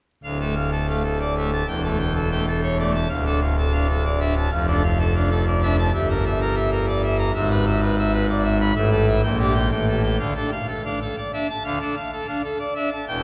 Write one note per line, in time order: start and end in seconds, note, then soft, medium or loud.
0.24 1.63 D1 medium
0.24 1.63 D2 medium
0.24 0.38 F5 medium
0.40 0.54 A3 medium
0.40 0.54 A4 medium
0.56 0.70 F5 medium
0.72 0.86 A4 medium
0.88 1.02 A3 medium
0.88 1.03 F5 medium
1.03 1.18 A4 medium
1.20 1.34 D5 medium
1.37 1.51 A3 medium
1.37 1.50 E5 medium
1.53 1.66 A5 medium
1.68 3.06 E1 medium
1.68 3.06 E2 medium
1.68 1.82 G5 medium
1.84 1.98 A3 medium
1.84 1.98 A4 medium
1.99 2.13 G5 medium
2.16 2.29 A4 medium
2.31 2.45 A3 medium
2.31 2.45 G5 medium
2.47 2.61 A4 medium
2.63 2.77 C#5 medium
2.79 2.93 A3 medium
2.79 2.92 D5 medium
2.94 3.08 A5 medium
3.10 4.48 D1 medium
3.10 4.48 D2 medium
3.10 3.24 F5 medium
3.25 3.40 D4 medium
3.25 3.40 A4 medium
3.41 3.56 F5 medium
3.58 3.72 A4 medium
3.73 3.88 D4 medium
3.73 3.87 F5 medium
3.89 4.03 A4 medium
4.05 4.19 D5 medium
4.20 4.35 D4 medium
4.20 4.34 E5 medium
4.37 4.50 A5 medium
4.51 5.89 F1 medium
4.51 5.90 F2 medium
4.51 4.66 F5 medium
4.67 4.82 D4 medium
4.67 4.82 A4 medium
4.84 4.98 F5 medium
4.99 5.14 A4 medium
5.15 5.29 D4 medium
5.15 5.29 F5 medium
5.30 5.45 A4 medium
5.46 5.61 D5 medium
5.62 5.76 D4 medium
5.62 5.76 E5 medium
5.79 5.92 A5 medium
5.93 7.30 G1 medium
5.93 7.30 G2 medium
5.93 6.08 E5 medium
6.10 6.24 A#4 medium
6.26 6.39 E5 medium
6.41 6.55 A#4 medium
6.56 6.70 E5 medium
6.72 6.86 A#4 medium
6.88 7.01 D5 medium
7.03 7.16 E5 medium
7.19 7.32 A#5 loud
7.35 8.72 G#1 loud
7.35 8.72 G#2 loud
7.35 7.48 E5 medium
7.51 7.65 B4 medium
7.66 7.80 E5 medium
7.82 7.96 B4 medium
7.98 8.12 E5 medium
8.13 8.27 B4 medium
8.29 8.43 D5 medium
8.45 8.58 E5 medium
8.61 8.74 B5 medium
8.75 9.21 A1 medium
8.75 9.21 A2 medium
8.75 8.89 E5 loud
8.92 9.06 A4 medium
9.07 9.21 E5 medium
9.23 9.70 A#1 medium
9.23 9.70 A#2 medium
9.23 9.37 G5 medium
9.39 9.54 D4 medium
9.39 9.53 G4 medium
9.54 9.68 G5 medium
9.71 10.18 A1 medium
9.71 10.18 A2 medium
9.71 9.85 G5 medium
9.88 10.02 A4 medium
10.03 10.17 G5 medium
10.19 10.33 D2 medium
10.19 10.33 D3 medium
10.19 10.34 F5 medium
10.36 10.50 D4 medium
10.36 10.50 A4 medium
10.52 10.66 F5 medium
10.68 10.83 A4 medium
10.85 10.99 D4 medium
10.85 10.99 F5 medium
11.01 11.15 A4 medium
11.17 11.31 D5 medium
11.33 11.47 D4 medium
11.33 11.47 E5 medium
11.50 11.63 A5 medium
11.64 11.78 D2 medium
11.64 11.78 D3 medium
11.64 11.79 F5 medium
11.81 11.95 D4 medium
11.81 11.95 A4 medium
11.96 12.11 F5 medium
12.12 12.26 A4 medium
12.27 12.42 D4 medium
12.27 12.42 F5 medium
12.44 12.58 A4 medium
12.59 12.74 D5 medium
12.75 12.90 D4 medium
12.75 12.89 E5 medium
12.91 13.05 A5 medium
13.07 13.23 E1 medium
13.07 13.23 E2 medium
13.07 13.22 G5 medium